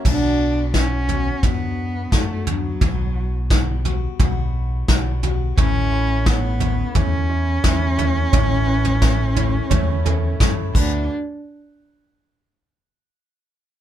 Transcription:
<<
  \new Staff \with { instrumentName = "Cello" } { \time 4/4 \key b \minor \tempo 4 = 87 d'4 cis'4 b4 a8 fis8~ | fis4 r2. | cis'4 b4 cis'2~ | cis'2. r8 d'8 |
r1 | }
  \new Staff \with { instrumentName = "Grand piano" } { \time 4/4 \key b \minor r1 | r1 | <a cis' e' cis''>8 <a cis' e' cis''>8 <a cis' e' cis''>8 <a cis' e' cis''>8 <a cis' e' cis''>8 <a cis' e' cis''>8 <a cis' e' e''>8 <a cis' e' cis''>8 | <a cis' e' cis''>8 <a cis' e' b'>8 <a cis' e' cis''>8 <a cis' e' cis''>8 <a cis' e' cis''>8 <a cis' e' a'>8 <a cis' e' cis''>8 <a d' fis' b'>8 |
r1 | }
  \new Staff \with { instrumentName = "Grand piano" } { \clef bass \time 4/4 \key b \minor r1 | r1 | <a,, a,>1 | <a,, a,>2.~ <a,, a,>8 d,8 |
r1 | }
  \new Staff \with { instrumentName = "Steel-string acoustic guitar" } { \time 4/4 \key b \minor <b, fis b d' fis'>4 <fis b fis'>8 <b fis'>8 <fis b d' fis'>4 <fis b d' fis'>8 <b d' fis'>8 | <b, e b fis'>4 <e g b fis'>8 <g b fis'>8 <e g b fis'>4 <e g b fis'>8 <g b fis'>8 | <a, e a cis' e'>4 <e a cis' e'>8 <a cis' e'>8 <e a cis' e'>4 <e a cis' e'>8 <a cis' e'>8 | <a, e a cis' e'>4 <e a cis' e'>8 <a cis' e'>8 <e a cis' e'>4 <e a cis' e'>8 <d a b fis'>8 |
r1 | }
  \new Staff \with { instrumentName = "Fingered electric bass" } { \clef bass \time 4/4 \key b \minor b,,2 fis,4 fis,4 | b,,2 b,,4 b,,4 | a,,2 e,4 e,4 | a,,2 e,4 fis,8 d,8 |
r1 | }
  \new DrumStaff \with { instrumentName = "Drums" } \drummode { \time 4/4 <cymc bd tomfh>4 <bd sn>8 tomfh8 <bd tomfh>4 <bd sn>8 tomfh8 | <bd tomfh>4 <bd sn>8 tomfh8 <bd tomfh>4 <bd sn>8 tomfh8 | <bd tomfh>4 <bd sn>8 tomfh8 <bd tomfh>4 <bd sn>8 tomfh8 | <bd tomfh>8. tomfh16 <bd sn>8 tomfh8 <bd tomfh>8 tomfh8 <bd sn>8 <cymc bd>8 |
r4 r4 r4 r4 | }
>>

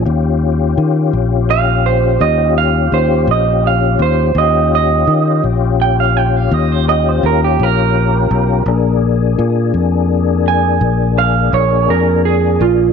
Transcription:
<<
  \new Staff \with { instrumentName = "Clean electric guitar" } { \time 12/8 \key ees \major \tempo 4. = 56 r2 f''8 c''8 ees''8 f''8 c''8 ees''8 f''8 c''8 | ees''8 ees''4 r8 g''16 f''16 g''16 f''16 ees''16 c''16 ees''16 c''16 bes'16 g'16 bes'4.~ | bes'8 r2 aes''4 f''8 des''8 bes'8 aes'8 f'8 | }
  \new Staff \with { instrumentName = "Tonewheel organ" } { \time 12/8 \key ees \major <des' f' g'>1. | <des' f' g'>1. | <bes d' aes'>1. | }
  \new Staff \with { instrumentName = "Fingered electric bass" } { \clef bass \time 12/8 \key ees \major ees,4 ees8 bes,,4. ees,4 ees,8 bes,,4 ees,8 | ees,4 ees8 bes,,4. ees,4 ees,8 bes,,4 ces,8 | bes,,4 bes,8 f,4. bes,,4 bes,,8 f,4 bes,,8 | }
>>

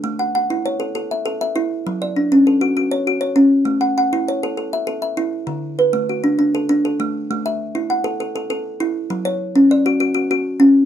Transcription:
\new Staff \with { instrumentName = "Kalimba" } { \time 12/8 \key a \major \tempo 4. = 133 << { r8 fis''8 fis''4 cis''4 a'8 e''4 e''4. | r8 d''8 d'4 a'4 fis'8 cis''4 cis''4. | r8 fis''8 fis''4 cis''4 a'8 e''4 e''4. | r4 b'4 fis'4 d'8 a'4 a'4. |
r8 e''4. fis''4 a'8 a'4. r4 | r8 cis''4. d''4 fis'8 fis'4. r4 | } \\ { a4 r8 e'4 a'4 r8 a'4 e'4 | fis4 r8 cis'4 fis'4 r8 fis'4 cis'4 | a4 r8 e'4 a'4 r8 a'4 e'4 | d4 r8 a4 d'4 r8 d'4 a4 |
a4 r8 e'4 a'4 r8 a'4 e'4 | fis4 r8 cis'4 fis'4 r8 fis'4 cis'4 | } >> }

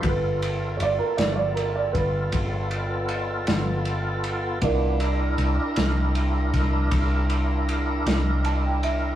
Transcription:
<<
  \new Staff \with { instrumentName = "Upright piano" } { \time 12/8 \key g \mixolydian \tempo 4. = 52 r4 <cis'' d''>16 bes'16 d''16 <cis'' d''>16 bes'16 d''16 b'2. r8 | r1. | }
  \new Staff \with { instrumentName = "Grand piano" } { \time 12/8 \key g \mixolydian << { r1. | r1 r4 a''16 g''16 e''8 | } \\ { <f' a' b'>1. | <e' bes' d''>1. | } >> }
  \new Staff \with { instrumentName = "Tonewheel organ" } { \time 12/8 \key g \mixolydian << { <b' c''>8 r1 r4. | r1. | } \\ { <b f' a'>1. | <f b d'>8 <d' e' bes'>1~ <d' e' bes'>4. | } >> }
  \new Staff \with { instrumentName = "Fingered electric bass" } { \clef bass \time 12/8 \key g \mixolydian g,,4 g,,16 r16 g,,4 g,,8 g,,4. g,,4. | c,4 c,16 r16 c,4 c,8 c,4. c,4. | }
  \new DrumStaff \with { instrumentName = "Drums" } \drummode { \time 12/8 <bd cymr>8 cymr8 cymr8 <cymr sn>8 cymr8 <bd cymr>8 <bd cymr>8 cymr8 cymr8 <cymr sn>8 cymr8 cymr8 | <bd cymr>8 cymr8 cymr8 <cymr sn>8 cymr8 <bd cymr sn>8 <bd cymr>8 cymr8 cymr8 <cymr sn>8 cymr8 cymr8 | }
>>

